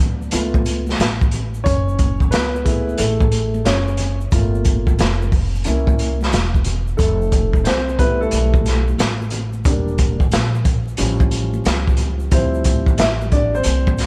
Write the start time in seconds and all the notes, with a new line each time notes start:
Already playing: D2 F#3 B3 D4
0.22 shaker
0.31 C#2 A3 B3 F4, closed hi-hat, high conga, shaker
0.54 kick, high conga, shaker
0.65 closed hi-hat, shaker
0.87 snare, high conga, shaker
0.98 A1, snare, closed hi-hat, shaker
1.21 kick, shaker
1.31 closed hi-hat, low conga, shaker
1.54 shaker
1.64 F#1 C#4 C#5, kick, closed hi-hat, shaker
1.89 shaker
1.99 kick, closed hi-hat, high conga, shaker
2.20 kick, shaker
2.31 C#2 B3 B4, snare, closed hi-hat, shaker
2.55 shaker
2.65 A3 E4 G#4, kick, closed hi-hat, low conga, shaker
2.89 shaker
2.98 A1 A3 A4, closed hi-hat, high conga, shaker
3.20 kick, high conga, shaker
3.32 closed hi-hat, shaker
3.54 high conga, shaker
3.65 F#1 C#4 C#5, snare, closed hi-hat, shaker
3.88 shaker
3.97 closed hi-hat, low conga, shaker
4.21 shaker
4.31 G1 A3 A#3 F4, kick, closed hi-hat, shaker
4.55 shaker
4.65 kick, closed hi-hat, high conga, shaker
4.87 kick, shaker
4.99 F1, snare, closed hi-hat, low conga, shaker
5.22 shaker
5.32 kick, open hi-hat, low conga, shaker
5.55 shaker
5.64 C2 A#3 C#4 E4, closed hi-hat, high conga, shaker
5.87 kick, high conga, shaker
5.99 closed hi-hat, shaker
6.21 snare, high conga, shaker
6.32 E1, snare, closed hi-hat, shaker
6.54 kick, shaker
6.64 closed hi-hat, low conga, shaker
6.87 shaker
6.97 F1 A3 A4, kick, closed hi-hat, shaker
7.22 shaker
7.32 kick, closed hi-hat, high conga, shaker
7.53 kick, shaker
7.64 C2 C4 C5, snare, closed hi-hat, shaker
7.89 shaker
7.99 G3 A3 B3 E4 B4, kick, closed hi-hat, low conga, shaker
8.21 A3 A4, shaker
8.31 B1, closed hi-hat, high conga, shaker
8.54 kick, high conga, shaker
8.65 snare, closed hi-hat, shaker
8.88 high conga, shaker
8.98 A1, snare, closed hi-hat, shaker
9.22 shaker
9.30 closed hi-hat, low conga, shaker
9.53 shaker
9.64 E1 G3 A#3 D4, kick, closed hi-hat, shaker
9.88 shaker
9.98 kick, closed hi-hat, high conga, shaker
10.20 kick, shaker
10.31 A#1, snare, closed hi-hat, shaker
10.55 shaker
10.65 kick, closed hi-hat, low conga, shaker
10.88 shaker
10.97 A1 F3 G3 C#4, closed hi-hat, high conga, shaker
11.20 kick, high conga, shaker
11.31 closed hi-hat, shaker
11.54 high conga, shaker
11.65 C#2, snare, closed hi-hat, shaker
11.87 kick, shaker
11.97 closed hi-hat, low conga, shaker
12.20 shaker
12.31 D2 F3 G3 C4 E4 C5, kick, closed hi-hat, shaker
12.54 shaker
12.64 kick, closed hi-hat, high conga, shaker
12.86 kick, shaker
12.98 A1 E4 E5, snare, closed hi-hat, shaker
13.21 shaker
13.32 D4 D5, kick, closed hi-hat, low conga, shaker
13.55 C4 C5, shaker
13.63 C2, closed hi-hat, high conga, shaker
13.87 kick, high conga, shaker
13.97 snare, closed hi-hat, shaker